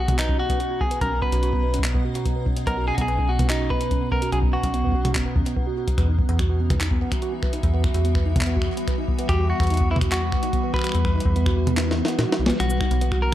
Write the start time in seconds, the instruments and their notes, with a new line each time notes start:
Already playing: fm bass B1, ambient pad B2 B3 C#4 F#4
0.00 clean electric guitar F#4
0.08 tine electric piano B3, ambient pad A#5, kick, closed hi-hat, mid tom
0.19 clean electric guitar D#4, tine electric piano B4, clap, closed hi-hat
0.29 tine electric piano C#4, kick
0.39 tine electric piano B3, clean electric guitar F#4
0.50 tine electric piano B3, kick, closed hi-hat
0.60 tine electric piano F#4, closed hi-hat
0.70 tine electric piano F#4, ambient pad D#5
0.81 tine electric piano B3, clean electric guitar G#4, kick
0.91 tine electric piano B4, closed hi-hat
1.01 fm bass B1, tine electric piano C#4, clean electric guitar A#4, kick, closed hi-hat
1.12 tine electric piano B3
1.22 tine electric piano B3, clean electric guitar B4, kick
1.32 fm bass B1, tine electric piano F#4, closed hi-hat
1.43 tine electric piano F#4, closed hi-hat
1.53 tine electric piano B3, kick
1.63 tine electric piano B4
1.74 tine electric piano C#4, closed hi-hat
1.79 kick
1.84 tine electric piano B3, clap, closed hi-hat
1.94 tine electric piano B3, kick
2.05 tine electric piano F#4
2.15 tine electric piano F#4, closed hi-hat
2.26 tine electric piano B3, kick, closed hi-hat
2.36 tine electric piano B4
2.46 tine electric piano C#4, kick
2.57 tine electric piano B3, closed hi-hat
2.67 fm bass B1, tine electric piano B3, clean electric guitar A#4, kick, closed hi-hat
2.77 tine electric piano F#4
2.88 tine electric piano F#4, clean electric guitar G#4
2.94 fm bass B1, tine electric piano B3, clean electric guitar F#4, kick, closed hi-hat
3.01 clean electric guitar G#4
3.08 tine electric piano B4, closed hi-hat
3.19 tine electric piano C#4, kick
3.29 tine electric piano B3, clean electric guitar F#4
3.39 tine electric piano B3, kick, closed hi-hat, mid tom
3.50 clean electric guitar D#4, tine electric piano F#4, clap, closed hi-hat
3.60 tine electric piano F#4
3.70 tine electric piano B3, clean electric guitar B4, kick
3.81 tine electric piano B4, closed hi-hat
3.91 tine electric piano C#4, kick, closed hi-hat
4.01 tine electric piano B3
4.12 tine electric piano B3, clean electric guitar A#4, kick
4.22 tine electric piano F#4, closed hi-hat
4.32 fm bass B1, tine electric piano F#4, clean electric guitar G#4, closed hi-hat
4.43 tine electric piano B3, kick
4.53 clean electric guitar F#4, tine electric piano B4
4.63 fm bass B1, tine electric piano C#4, kick, closed hi-hat
4.74 tine electric piano B3, closed hi-hat
4.84 tine electric piano B3, kick
4.87 kick
4.89 kick
4.92 tine electric piano F#4, kick
5.05 tine electric piano F#4, closed hi-hat, mid tom
5.15 fm bass F#1, tine electric piano B3, kick, clap, closed hi-hat
5.26 tine electric piano B4
5.36 fm bass D#2, tine electric piano C#4, kick
5.46 tine electric piano B3, closed hi-hat
5.57 tine electric piano B3, kick
5.67 tine electric piano F#4
5.77 tine electric piano F#4
5.88 tine electric piano B3, kick, closed hi-hat
5.98 fm bass E2, ambient pad E3, tine electric piano B4, finger snap, kick, closed hi-hat
6.08 tine electric piano D#4
6.13 ambient pad B3
6.19 tine electric piano B3, kick
6.23 ambient pad F#4
6.29 fm bass E2, ambient pad G3, tine electric piano B3, closed hi-hat
6.39 tine electric piano F#4, ambient pad E5, finger snap, kick, closed hi-hat
6.50 tine electric piano F#4
6.60 tine electric piano B3
6.70 tine electric piano B4, finger snap, kick, closed hi-hat, mid tom
6.81 tine electric piano D#4, clap, closed hi-hat
6.91 tine electric piano B3, kick
7.01 tine electric piano B3
7.12 tine electric piano F#4, finger snap, kick, closed hi-hat
7.22 tine electric piano F#4, closed hi-hat
7.32 tine electric piano B3
7.43 tine electric piano B4, finger snap, kick
7.53 tine electric piano D#4, closed hi-hat
7.63 fm bass E2, tine electric piano B3, kick, closed hi-hat
7.74 tine electric piano B3
7.84 tine electric piano F#4, finger snap, kick
7.94 fm bass E2, tine electric piano F#4, closed hi-hat
8.05 tine electric piano B3, closed hi-hat
8.15 tine electric piano B4, finger snap, kick
8.26 tine electric piano D#4
8.36 tine electric piano B3, kick, closed hi-hat, mid tom
8.41 clap
8.46 tine electric piano B3, closed hi-hat
8.57 tine electric piano F#4, kick
8.62 finger snap
8.67 tine electric piano F#4
8.77 tine electric piano B3, closed hi-hat
8.88 tine electric piano B4, finger snap, kick, closed hi-hat
8.98 tine electric piano D#4
9.08 tine electric piano B3, kick
9.19 tine electric piano B3, closed hi-hat
9.29 fm bass E2, tine electric piano F#4, clean electric guitar G4, finger snap, kick, closed hi-hat
9.39 tine electric piano F#4
9.50 tine electric piano B3, clean electric guitar F#4
9.60 fm bass E2, tine electric piano B4, finger snap, kick, closed hi-hat
9.63 closed hi-hat
9.67 tine electric piano D#4, closed hi-hat
9.70 closed hi-hat
9.74 closed hi-hat
9.77 tine electric piano B3, kick, closed hi-hat
9.91 tine electric piano B3, clean electric guitar E4
9.96 mid tom
10.01 tine electric piano F#4, finger snap, kick, closed hi-hat
10.12 tine electric piano F#4, clean electric guitar F#4, clap, closed hi-hat
10.22 tine electric piano B3
10.32 tine electric piano B4, finger snap, kick
10.43 tine electric piano D#4, closed hi-hat
10.53 tine electric piano B3, kick, closed hi-hat
10.64 tine electric piano B3
10.74 tine electric piano F#4, clean electric guitar B4, finger snap, kick
10.76 finger snap
10.79 finger snap
10.82 tine electric piano F#4, finger snap
10.84 finger snap, closed hi-hat
10.87 finger snap
10.89 finger snap
10.92 fm bass E2, tine electric piano B3, finger snap, closed hi-hat
11.05 tine electric piano B4, finger snap, kick
11.15 tine electric piano D#4
11.20 closed hi-hat
11.26 fm bass E2, tine electric piano B3, kick
11.36 tine electric piano B3, closed hi-hat
11.46 tine electric piano F#4, finger snap, kick
11.57 tine electric piano F#4
11.67 tine electric piano B3, closed hi-hat, mid tom
11.77 tine electric piano B4, snare, clap, closed hi-hat
11.88 tine electric piano D#4, snare
11.98 tine electric piano B3
12.05 tine electric piano B3, snare, closed hi-hat
12.19 fm bass A#2, tine electric piano F#4, snare, closed hi-hat
12.29 tine electric piano F#4, snare
12.39 fm bass B1, tine electric piano B3
12.46 tine electric piano B4, snare, closed hi-hat
12.60 fm bass B1, ambient pad B2, tine electric piano B3, clean electric guitar F#4, finger snap, closed hi-hat
12.70 tine electric piano B4, shaker
12.81 tine electric piano D#4, finger snap, kick
12.91 fm bass B1, tine electric piano B3, closed hi-hat
13.01 tine electric piano B3, closed hi-hat
13.12 ambient pad C#4 D#5, tine electric piano F#4, finger snap, kick
13.22 tine electric piano F#4, clean electric guitar A#4